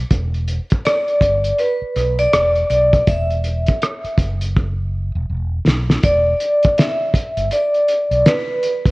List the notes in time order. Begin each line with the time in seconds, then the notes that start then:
0.11 E1, kick, closed hi-hat
0.34 closed hi-hat
0.48 closed hi-hat
0.70 kick, closed hi-hat
0.85 D5, cross-stick, closed hi-hat
1.08 closed hi-hat
1.21 G1, kick, closed hi-hat
1.44 closed hi-hat
1.58 B4, closed hi-hat
1.81 muted fretless electric bass stroke
1.96 B1, cross-stick, closed hi-hat
2.19 D5, closed hi-hat
2.33 E1, cross-stick, closed hi-hat
2.55 closed hi-hat
2.70 B1 D5, closed hi-hat
2.93 kick, closed hi-hat
3.07 E1 E5, kick, closed hi-hat
3.31 closed hi-hat
3.44 closed hi-hat
3.67 kick, closed hi-hat
3.82 cross-stick, closed hi-hat
4.04 muted fretless electric bass stroke, closed hi-hat
4.18 F#1, kick, closed hi-hat
4.41 closed hi-hat
4.57 kick
5.15 E1
5.30 E1
5.66 B1, snare
5.90 snare
6.03 E1 D5, kick, closed hi-hat
6.40 closed hi-hat
6.63 kick, closed hi-hat
6.78 E5, snare, closed hi-hat
7.14 kick, closed hi-hat
7.37 G1, closed hi-hat
7.51 D5, closed hi-hat
7.74 closed hi-hat
7.88 closed hi-hat
8.11 B1, closed hi-hat
8.26 B4, snare, closed hi-hat
8.63 closed hi-hat
8.86 kick, closed hi-hat